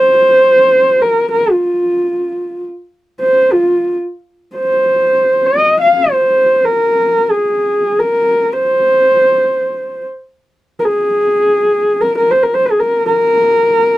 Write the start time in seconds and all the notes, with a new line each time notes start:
Already playing: C5
1.01 A#4
1.32 A#4
1.52 F4
3.20 C5
3.53 F4
4.56 C5
5.46 D#5
5.81 F5
6.12 C5
6.65 A#4
7.31 G#4
7.99 A#4
8.52 C5
10.79 A#4
10.85 G#4
12.01 A#4
12.18 A#4
12.31 C5
12.43 A#4
12.54 C5
12.66 G#4
12.80 A#4
13.06 A#4